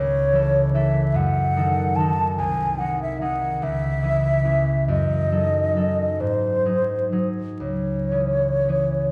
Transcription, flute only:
0.00 0.70 C#5 medium
0.75 1.18 E5 medium
1.16 1.98 F#5 medium
1.96 2.37 A5 medium
2.37 2.80 G#5 medium
2.79 2.99 F#5 medium
3.02 3.21 E5 medium
3.21 3.65 F#5 medium
3.63 4.89 E5 medium
4.90 6.22 D#5 medium
6.21 7.28 C5 medium
7.61 9.12 C#5 medium

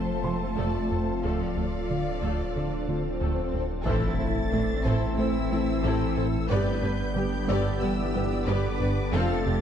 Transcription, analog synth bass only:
0.00 0.11 F3 medium
0.25 0.45 F3 medium
0.58 0.78 F2 medium
0.92 1.11 F2 medium
1.24 1.44 D2 medium
1.57 1.76 D2 medium
1.91 2.10 D3 medium
2.23 2.42 D2 medium
2.56 2.75 D3 medium
2.88 3.08 D3 medium
3.21 3.41 D2 medium
3.54 3.74 D2 medium
3.87 4.06 A2 medium
4.20 4.40 A2 medium
4.53 4.73 A3 medium
4.86 5.05 A2 medium
5.18 5.38 A3 medium
5.52 5.72 A3 medium
5.85 6.04 A2 medium
6.18 6.37 A2 medium
6.50 6.70 G2 medium
6.83 7.03 G2 medium
7.16 7.36 G3 medium
7.50 7.69 G2 medium
7.83 8.03 G3 medium
8.15 8.35 G3 medium
8.47 8.67 G2 medium
8.80 9.00 G2 medium
9.13 9.33 F2 loud
9.46 9.61 F2 medium

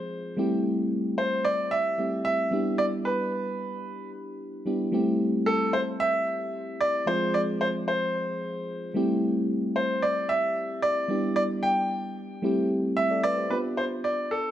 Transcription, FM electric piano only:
0.00 0.34 F3 medium
0.00 0.34 G#3 medium
0.00 0.34 C4 medium
0.00 0.35 F4 medium
0.00 0.35 G#4 medium
0.37 1.95 G3 medium
0.37 1.95 A3 medium
0.37 1.96 C4 medium
0.37 1.96 E4 medium
0.37 1.96 G4 medium
1.98 2.50 G3 soft
1.98 2.52 A3 soft
1.98 2.52 C4 soft
1.98 2.52 E4 soft
1.98 2.52 G4 medium
2.51 4.62 G3 medium
2.51 4.62 B3 medium
2.51 4.63 D4 medium
2.51 4.63 E4 medium
2.51 4.63 G4 medium
4.66 4.91 G3 medium
4.66 4.93 B3 medium
4.66 4.93 D4 medium
4.66 4.92 E4 medium
4.66 4.93 G4 medium
4.92 7.03 G3 medium
4.92 7.03 A3 medium
4.92 7.03 C4 medium
4.92 7.04 E4 medium
4.92 7.04 G4 medium
7.06 8.91 F3 medium
7.06 8.91 G#3 medium
7.06 8.91 C4 medium
7.06 8.92 F4 medium
7.06 8.92 G#4 medium
8.94 11.05 G3 medium
8.94 11.05 A3 medium
8.94 11.06 C4 medium
8.94 11.06 E4 medium
8.94 11.06 G4 medium
11.08 12.40 G3 medium
11.08 12.40 B3 medium
11.08 12.41 D4 medium
11.08 12.41 E4 medium
11.08 12.41 G4 medium
12.42 13.48 G3 medium
12.42 13.48 A3 medium
12.42 13.48 C4 medium
12.42 13.49 E4 medium
12.42 12.97 G4 medium
13.10 13.23 A4 medium
13.10 13.23 D5 medium
13.24 13.37 B4 medium
13.24 13.37 E5 medium
13.37 13.51 G4 medium
13.37 13.63 C5 medium
13.50 14.51 B3 medium
13.50 14.51 D4 medium
13.50 14.51 F4 medium
13.50 14.51 G4 medium

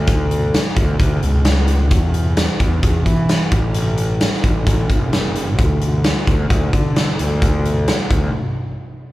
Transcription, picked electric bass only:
0.00 0.56 D2 medium
0.77 0.95 D2 medium
0.99 1.17 D2 medium
1.23 1.91 C#2 medium
1.91 2.44 E2 medium
2.60 2.78 E2 medium
2.83 3.01 E2 loud
3.06 3.41 E3 medium
3.52 4.23 A1 medium
4.44 4.62 A1 medium
4.67 4.85 A1 loud
4.90 5.58 F#1 medium
5.58 6.12 D2 loud
6.27 6.45 D2 medium
6.51 6.68 D2 loud
6.73 7.09 D3 medium
7.20 7.91 D2 medium
8.11 8.29 D2 medium

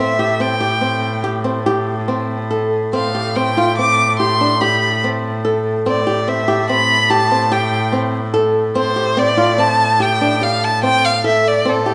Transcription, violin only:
0.00 0.42 E5 medium
0.41 1.24 G5 medium
2.94 3.37 F5 medium
3.35 3.77 G5 medium
3.78 4.17 D6 medium
4.19 4.62 C6 medium
4.61 5.03 B5 medium
5.87 6.30 D5 medium
6.28 6.69 E5 medium
6.70 7.12 B5 medium
7.10 7.54 A5 medium
7.52 7.94 G5 medium
8.76 9.21 C5 medium
9.19 9.61 D5 medium
9.59 10.03 A5 medium
10.02 10.44 G5 medium
10.43 10.65 F5 medium
10.64 10.83 A5 medium
10.84 11.06 G5 medium
11.05 11.25 F5 medium
11.27 11.49 E5 medium
11.48 11.70 D5 medium
11.69 11.94 A4 medium

